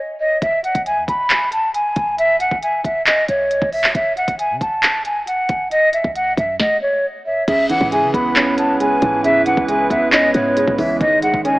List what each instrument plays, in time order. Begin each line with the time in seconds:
0.20 flute D#5
0.42 808-style bass E1, flute E5, kick, closed hi-hat
0.64 flute F#5, closed hi-hat
0.75 808-style bass B1, kick, closed hi-hat
0.86 flute G#5, closed hi-hat
0.97 808-style bass E2
1.08 808-style bass E1, flute B5, kick, closed hi-hat
1.30 clap, closed hi-hat
1.52 flute A5, closed hi-hat
1.74 flute G#5, closed hi-hat
1.96 808-style bass B1, kick, closed hi-hat
2.18 flute E5, closed hi-hat
2.40 flute F#5, closed hi-hat
2.51 808-style bass E1, kick
2.62 flute G#5, closed hi-hat
2.84 808-style bass E1, flute E5, kick, closed hi-hat
3.07 flute D#5, clap, closed hi-hat
3.28 808-style bass B1, flute C#5, closed hi-hat
3.51 closed hi-hat
3.62 808-style bass B1, kick
3.73 flute E5, open hi-hat
3.84 clap
3.95 808-style bass F#1, flute E5, kick, closed hi-hat
4.17 flute F#5, closed hi-hat
4.28 808-style bass F#1, kick, closed hi-hat
4.39 flute G#5, closed hi-hat
4.50 808-style bass C#3
4.61 808-style bass F#1, flute A5, kick, closed hi-hat
4.83 clap, closed hi-hat
5.05 flute G#5, closed hi-hat
5.27 flute F#5, closed hi-hat
5.49 808-style bass F#1, kick, closed hi-hat
5.71 flute D#5, closed hi-hat
5.93 flute E5, closed hi-hat
6.04 808-style bass C#2, kick
6.15 flute F#5, closed hi-hat
6.37 808-style bass F#2, flute E5, kick, closed hi-hat
6.59 flute D#5, kick, snare
6.82 flute C#5
7.26 flute E5
7.48 808-style bass C#2, analog synth pad C#3 G#3 E4 B4, grand piano C#3, flute E5, kick, closed hi-hat, crash
7.69 grand piano E3, flute F#5, closed hi-hat
7.81 808-style bass G#2, kick
7.92 grand piano G#3, flute G#5, closed hi-hat
8.03 808-style bass C#3
8.14 808-style bass C#2, grand piano B3, flute B5, kick, closed hi-hat
8.36 grand piano C#4, clap, closed hi-hat
8.58 grand piano B3, flute A5, closed hi-hat
8.80 grand piano G#3, flute G#5, closed hi-hat
9.02 808-style bass G#2, grand piano E3, kick, closed hi-hat
9.24 grand piano C#3, flute E5, closed hi-hat
9.46 grand piano E3, flute F#5, closed hi-hat
9.57 808-style bass C#2, kick
9.68 grand piano G#3, flute G#5, closed hi-hat
9.90 808-style bass C#2, grand piano B3, flute E5, kick, closed hi-hat
10.12 grand piano C#4, flute D#5, clap, closed hi-hat
10.34 808-style bass G#2, grand piano B3, flute C#5, closed hi-hat
10.57 grand piano G#3, closed hi-hat
10.68 808-style bass G#2, kick
10.78 808-style bass C#2, grand piano E3, flute E5, kick, open hi-hat
11.01 808-style bass G#1, analog synth pad C#3 D#4 G#4, grand piano D#3, flute D#5, kick, closed hi-hat
11.22 grand piano G#3, flute F#5, closed hi-hat
11.34 808-style bass G#1, kick
11.45 grand piano C#4, flute G#5, closed hi-hat
11.56 808-style bass D#3